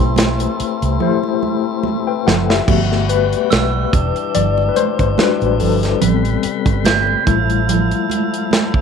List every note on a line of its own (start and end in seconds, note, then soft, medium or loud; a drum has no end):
0.00 0.45 B1 medium
0.00 0.43 A3 medium
0.00 2.64 A3 medium
0.00 2.64 C4 medium
0.00 0.44 E4 medium
0.00 2.64 E4 medium
0.00 0.44 G4 medium
0.00 2.08 B4 medium
0.00 0.44 C5 medium
0.00 1.36 C6 soft
0.16 snare loud
0.16 closed hi-hat medium
0.16 muted conga soft
0.16 high conga medium
0.39 closed hi-hat medium
0.39 muted conga soft
0.60 muted fingered electric bass stroke soft
0.60 closed hi-hat medium
0.82 0.97 C2 medium
0.82 closed hi-hat soft
1.00 2.11 A3 medium
1.00 2.11 E4 medium
1.00 1.85 G4 medium
1.00 1.85 C5 medium
1.00 low conga medium
1.23 muted conga soft
1.43 high conga medium
1.83 muted conga soft
1.83 high conga medium
2.07 2.26 B4 medium
2.07 2.25 G5 medium
2.27 2.59 F#1 medium
2.27 2.48 A4 medium
2.27 2.48 F#5 medium
2.27 snare medium
2.27 low conga medium
2.50 2.89 G4 medium
2.50 2.89 E5 medium
2.50 snare medium
2.67 3.33 G1 loud
2.67 3.92 G3 medium
2.67 3.25 A3 medium
2.67 3.92 B3 medium
2.67 3.25 B3 soft
2.67 3.92 F#4 medium
2.67 3.25 F#4 soft
2.67 kick loud
2.67 crash medium
2.67 muted conga soft
2.67 low conga medium
2.92 snare soft
3.09 4.38 B4 medium
3.09 closed hi-hat medium
3.33 closed hi-hat soft
3.50 3.84 B1 medium
3.50 4.30 E6 medium
3.50 snare loud
3.50 closed hi-hat medium
3.50 muted conga soft
3.50 high conga medium
3.73 muted conga soft
3.93 4.11 E1 medium
3.93 6.00 E3 medium
3.93 7.24 G3 medium
3.93 6.00 D4 medium
3.93 kick loud
3.93 closed hi-hat medium
4.16 closed hi-hat soft
4.35 4.68 G1 medium
4.35 4.71 D5 medium
4.35 closed hi-hat medium
4.35 low conga medium
4.58 muted conga soft
4.69 4.76 B4 medium
4.76 5.19 C5 medium
4.76 closed hi-hat medium
4.76 high conga medium
4.99 5.14 G1 medium
4.99 kick medium
4.99 closed hi-hat soft
5.18 5.97 G3 medium
5.18 5.98 D4 soft
5.18 5.98 F#4 medium
5.18 5.61 B4 medium
5.18 snare medium
5.18 closed hi-hat medium
5.18 muted conga soft
5.18 high conga medium
5.41 5.62 A1 medium
5.41 closed hi-hat soft
5.41 muted conga soft
5.60 5.93 G1 medium
5.60 7.23 A4 medium
5.60 open hi-hat medium
5.60 low conga medium
5.83 snare soft
5.83 closed hi-hat medium
6.01 6.35 A1 loud
6.01 7.26 C3 medium
6.01 6.58 G3 soft
6.01 6.58 B3 soft
6.01 6.59 C4 medium
6.01 7.25 B4 medium
6.01 closed hi-hat medium
6.01 low conga medium
6.25 closed hi-hat soft
6.25 muted conga soft
6.43 muted fingered electric bass stroke soft
6.43 closed hi-hat medium
6.66 7.13 G1 medium
6.66 kick medium
6.66 closed hi-hat soft
6.85 7.65 G6 medium
6.85 snare loud
6.85 closed hi-hat medium
6.85 muted conga soft
6.85 high conga medium
7.07 muted conga soft
7.26 7.92 A1 medium
7.26 8.81 F3 medium
7.26 7.83 G3 medium
7.26 7.84 A3 medium
7.26 8.81 A3 medium
7.26 7.84 E4 medium
7.26 8.81 E4 medium
7.26 kick loud
7.26 closed hi-hat medium
7.50 closed hi-hat soft
7.69 closed hi-hat medium
7.69 muted conga soft
7.69 low conga medium
7.91 closed hi-hat soft
7.91 muted conga soft
8.10 closed hi-hat medium
8.10 high conga medium
8.34 closed hi-hat soft
8.51 snare medium
8.51 closed hi-hat medium
8.51 high conga medium
8.74 kick medium